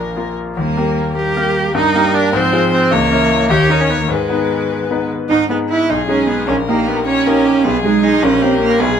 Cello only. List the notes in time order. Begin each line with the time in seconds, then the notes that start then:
Already playing: F3
0.58 G3
1.17 G3
1.75 G3
2.34 F3
2.92 E3
3.49 D#3
4.09 D#3
5.29 D#4
5.50 B3
5.69 E4
5.90 D#4
6.08 C#4
6.27 B3
6.47 C#4
6.68 A#3
6.88 B3
7.06 C#4
7.64 B3
7.84 G#3
8.03 D#4
8.23 C#4
8.42 C4
8.61 A#3
8.80 B3